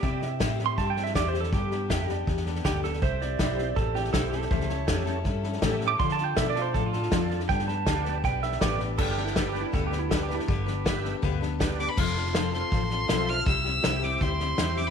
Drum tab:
CC |----------------|----------------|----------------|----------------|
HH |----p-------p---|----p-------p---|----p-------p---|----p-------p---|
SD |o-o-o-o-o-ooo-oo|o-o-o-o-ooooo-oo|o-o-o-o-o-ooo-oo|ooo-o-o-o-ooo-o-|
BD |o---o---o---o---|o---o---o---o---|o---o---o---o---|o---o---o---o---|

CC |----------------|----------------|x---------------|----------------|
HH |----p-------p---|----p-------p---|----p-------p---|----p-------p---|
SD |ooo-o-o-o-ooo-oo|ooo-o-o-o-ooo-o-|o-ooo-o-o-o-o-oo|o-o-o-o-o-o-o-o-|
BD |o---o---o---o---|o---o---o---o---|o---o---o---o---|o---o---o---o---|

CC |x---------------|----------------|
HH |----p-------p---|----p-------p---|
SD |o-ooo-o-o-o-o-o-|o-o-o-o-o-o-o-o-|
BD |o-------o-------|o-------o-------|